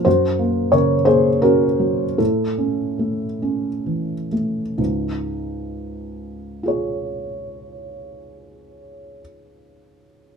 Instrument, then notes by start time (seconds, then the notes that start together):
felt piano
0.05 F#2 F#4 C5
0.39 A#3
0.72 C#3 A#4 C#5
1.05 A#3 G#4 C5
1.42 C#4 F#4 A#4
1.79 F#3
2.18 A2 E4 A4
2.58 C#4
2.99 A3
3.42 C#4
3.86 E3
4.32 A3
4.78 C#2 G#2
6.63 F4 G#4
6.68 C#5